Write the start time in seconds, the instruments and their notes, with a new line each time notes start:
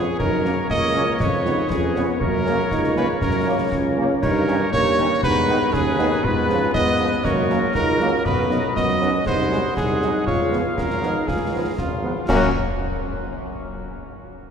Already playing: tuba F2, cornet G#4, woodwind section B4 C#5
0.19 tuba F#2, euphonium D#4, woodwind section A#4 C#5, cornet A#4, concert bass drum, crash
0.44 trombone section C#3 A#3, french horn section F#3 A#3 C#4, euphonium C#4, snare
0.70 tuba C#2, euphonium A#3, cornet D#5, concert bass drum, snare
0.82 snare
0.95 trombone section C#3 A#3, french horn section F#3 A#3 C#4, snare
1.20 tuba F2, euphonium F4, woodwind section B4, cornet C#5, concert bass drum, snare
1.45 trombone section C#3 B3, french horn section G#3 B3 C#4, euphonium D#4, snare
1.70 tuba F2, euphonium C#4, cornet G#4, concert bass drum, snare
1.95 trombone section C#3 B3, french horn section G#3 B3 C#4, euphonium B3, snare
2.20 tuba F#2, euphonium A#3, woodwind section A#4 C#5, cornet A#4, concert bass drum
2.46 trombone section C#3 A#3, french horn section A#3 C#4, euphonium C#4, snare
2.71 tuba C#2, euphonium D#4, concert bass drum, snare
2.84 snare
2.96 trombone section C#3 A#3, french horn section A#3 C#4, cornet B4, snare
3.21 tuba F#2, euphonium C#4, cornet A#4, concert bass drum, snare
3.46 trombone section C#3 A#3, french horn section A#3 C#4
3.72 tuba C#2, concert bass drum, snare
3.97 trombone section C#3 A#3, french horn section A#3 C#4
4.22 tuba G2, euphonium D#4, woodwind section D#4 C#5, cornet A#4, concert bass drum, crash
4.48 trombone section D#3 C#4, french horn section A#3 C#4 D#4, euphonium C#4, snare
4.72 tuba G2, euphonium A#3, cornet C#5, concert bass drum, snare
4.86 snare
4.97 trombone section D#3 C#4, french horn section A#3 C#4 D#4, snare
5.23 tuba G#2, euphonium B3, woodwind section B4, cornet B4, concert bass drum, snare
5.48 trombone section D#3 B3, french horn section G#3 B3 D#4, snare
5.73 tuba D#2, euphonium C#4, cornet G#4, concert bass drum, snare
5.99 trombone section D#3 B3, french horn section G#3 B3 D#4, euphonium D#4, snare
6.23 tuba G#2, euphonium B3, woodwind section F4, cornet B4, concert bass drum
6.49 trombone section F3 B3, french horn section F3 B3 F4, euphonium C#4, snare
6.74 tuba G#2, euphonium B3, cornet D#5, concert bass drum, snare
6.87 snare
6.99 trombone section F3 B3, french horn section F3 B3 F4, snare
7.24 tuba F#2, euphonium A#3, woodwind section F#4 A#4, cornet C#5, concert bass drum, snare
7.50 trombone section F#3 A#3, french horn section F#3 A#3 C#4, snare
7.75 tuba C#2, euphonium D#4, cornet A#4, concert bass drum, snare
8.00 trombone section F#3 A#3, french horn section F#3 A#3 C#4, euphonium C#4, snare
8.25 tuba B1, euphonium B3, cornet B4, woodwind section D#5, concert bass drum, crash
8.50 trombone section F#3 B3, french horn section F#3 B3 D#4, snare
8.76 tuba F#2, euphonium B3, cornet D#5, concert bass drum, snare
8.89 snare
9.01 trombone section F#3 B3, french horn section F#3 B3 D#4, euphonium C#4, snare
9.26 tuba C2, euphonium D#4, woodwind section G#4 F#5, cornet C5, concert bass drum, snare
9.51 trombone section F#3 G#3, french horn section F#3 G#3 D#4, snare
9.77 tuba C2, euphonium D#4, cornet G#4, concert bass drum, snare
10.02 trombone section F#3 G#3, french horn section F#3 G#3 D#4, snare
10.27 tuba C#2, euphonium F4, woodwind section G#4 F5, cornet C#5, concert bass drum
10.52 trombone section F3 B3, french horn section F3 G#3 B3, snare
10.77 tuba G#1, euphonium C#4, cornet A#4, concert bass drum, snare
10.90 snare
11.03 trombone section F3 B3, french horn section F3 G#3 B3, euphonium D#4, snare
11.27 tuba C#2, euphonium F4, cornet G#4, concert bass drum, snare
11.53 trombone section F3 B3, french horn section F3 G#3 B3, euphonium D#4
11.78 tuba G#1, euphonium C#4, cornet F4, concert bass drum, snare
12.03 trombone section F3 B3, french horn section F3 G#3 B3
12.28 tuba F#2, trombone section F#3 A#3, french horn section F#3 A#3 C#4, cornet F#4, woodwind section A#4 F#5, concert bass drum, snare, crash